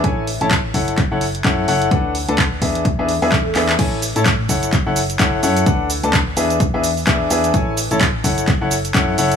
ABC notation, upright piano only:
X:1
M:4/4
L:1/16
Q:"Swing 16ths" 1/4=128
K:A
V:1 name="Upright piano"
[EAcg]2 z [EAca] z2 [EAcf]2 z [EAcf] z2 [EAcf]2 [EAcf]2 | [DABf]2 z [DABa] z2 [DGBe]2 z [DGBe] z [DGBe] z2 [DGBe] z | [EAcg]2 z [EAca] z2 [EAcf]2 z [EAcf] z2 [EAcf]2 [EAcf]2 | [DABf]2 z [DABa] z2 [DGBe]2 z [DGBe] z2 [DGBe]2 [DGBe]2 |
[EAcg]2 z [EAca] z2 [EAcf]2 z [EAcf] z2 [EAcf]2 [EAcf]2 |]